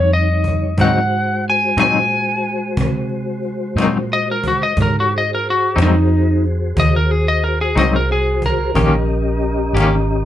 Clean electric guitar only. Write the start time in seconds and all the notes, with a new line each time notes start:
0.78 G#2 F#3 C4 D#4
1.77 G#2 F#3 C4 D#4
3.77 G#2 F#3 C4 D#4
5.76 G#2 F#3 C4 D#4
7.75 G#2 F#3 C4 D#4
8.75 D#3 A#3 C#4 G4
9.74 D#3 A#3 C#4 G4